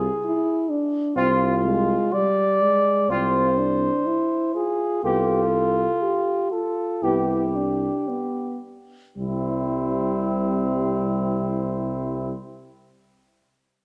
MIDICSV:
0, 0, Header, 1, 6, 480
1, 0, Start_track
1, 0, Key_signature, 0, "major"
1, 0, Tempo, 914634
1, 609, Time_signature, 4, 2, 24, 8
1, 610, Tempo, 969305
1, 2530, Tempo, 996678
1, 3490, Tempo, 1067616
1, 6555, End_track
2, 0, Start_track
2, 0, Title_t, "Cornet"
2, 0, Program_c, 0, 56
2, 0, Note_on_c, 0, 68, 62
2, 366, Note_off_c, 0, 68, 0
2, 610, Note_on_c, 0, 65, 69
2, 1092, Note_on_c, 0, 74, 78
2, 1100, Note_off_c, 0, 65, 0
2, 1570, Note_on_c, 0, 72, 62
2, 1577, Note_off_c, 0, 74, 0
2, 2285, Note_off_c, 0, 72, 0
2, 2288, Note_on_c, 0, 68, 49
2, 2525, Note_off_c, 0, 68, 0
2, 2531, Note_on_c, 0, 65, 57
2, 3230, Note_off_c, 0, 65, 0
2, 3241, Note_on_c, 0, 69, 46
2, 3488, Note_on_c, 0, 67, 40
2, 3495, Note_off_c, 0, 69, 0
2, 4206, Note_off_c, 0, 67, 0
2, 4448, Note_on_c, 0, 64, 39
2, 5869, Note_off_c, 0, 64, 0
2, 6555, End_track
3, 0, Start_track
3, 0, Title_t, "Flugelhorn"
3, 0, Program_c, 1, 56
3, 610, Note_on_c, 1, 65, 49
3, 792, Note_off_c, 1, 65, 0
3, 1570, Note_on_c, 1, 65, 44
3, 1752, Note_off_c, 1, 65, 0
3, 2533, Note_on_c, 1, 67, 39
3, 2714, Note_off_c, 1, 67, 0
3, 3490, Note_on_c, 1, 67, 32
3, 3671, Note_off_c, 1, 67, 0
3, 4452, Note_on_c, 1, 60, 33
3, 5873, Note_off_c, 1, 60, 0
3, 6555, End_track
4, 0, Start_track
4, 0, Title_t, "French horn"
4, 0, Program_c, 2, 60
4, 130, Note_on_c, 2, 64, 54
4, 370, Note_on_c, 2, 62, 51
4, 378, Note_off_c, 2, 64, 0
4, 611, Note_on_c, 2, 60, 46
4, 619, Note_off_c, 2, 62, 0
4, 846, Note_off_c, 2, 60, 0
4, 849, Note_on_c, 2, 56, 46
4, 1087, Note_off_c, 2, 56, 0
4, 1092, Note_on_c, 2, 55, 46
4, 1331, Note_on_c, 2, 56, 45
4, 1339, Note_off_c, 2, 55, 0
4, 1570, Note_on_c, 2, 60, 49
4, 1578, Note_off_c, 2, 56, 0
4, 1808, Note_on_c, 2, 62, 47
4, 1815, Note_off_c, 2, 60, 0
4, 2047, Note_on_c, 2, 64, 47
4, 2055, Note_off_c, 2, 62, 0
4, 2289, Note_on_c, 2, 65, 44
4, 2296, Note_off_c, 2, 64, 0
4, 2530, Note_off_c, 2, 65, 0
4, 2533, Note_on_c, 2, 69, 50
4, 3005, Note_on_c, 2, 67, 38
4, 3012, Note_off_c, 2, 69, 0
4, 3244, Note_on_c, 2, 65, 40
4, 3251, Note_off_c, 2, 67, 0
4, 3487, Note_on_c, 2, 64, 38
4, 3494, Note_off_c, 2, 65, 0
4, 3726, Note_on_c, 2, 62, 33
4, 3733, Note_off_c, 2, 64, 0
4, 3964, Note_on_c, 2, 59, 29
4, 3971, Note_off_c, 2, 62, 0
4, 4208, Note_off_c, 2, 59, 0
4, 4453, Note_on_c, 2, 55, 32
4, 5874, Note_off_c, 2, 55, 0
4, 6555, End_track
5, 0, Start_track
5, 0, Title_t, "Euphonium"
5, 0, Program_c, 3, 58
5, 609, Note_on_c, 3, 60, 47
5, 791, Note_off_c, 3, 60, 0
5, 1568, Note_on_c, 3, 60, 47
5, 1751, Note_off_c, 3, 60, 0
5, 2530, Note_on_c, 3, 59, 40
5, 2712, Note_off_c, 3, 59, 0
5, 3490, Note_on_c, 3, 59, 35
5, 3671, Note_off_c, 3, 59, 0
5, 4453, Note_on_c, 3, 48, 30
5, 5874, Note_off_c, 3, 48, 0
5, 6555, End_track
6, 0, Start_track
6, 0, Title_t, "Tuba"
6, 0, Program_c, 4, 58
6, 610, Note_on_c, 4, 36, 56
6, 1010, Note_off_c, 4, 36, 0
6, 1568, Note_on_c, 4, 36, 53
6, 1966, Note_off_c, 4, 36, 0
6, 2532, Note_on_c, 4, 36, 46
6, 2926, Note_off_c, 4, 36, 0
6, 3491, Note_on_c, 4, 36, 40
6, 3882, Note_off_c, 4, 36, 0
6, 4453, Note_on_c, 4, 36, 36
6, 5874, Note_off_c, 4, 36, 0
6, 6555, End_track
0, 0, End_of_file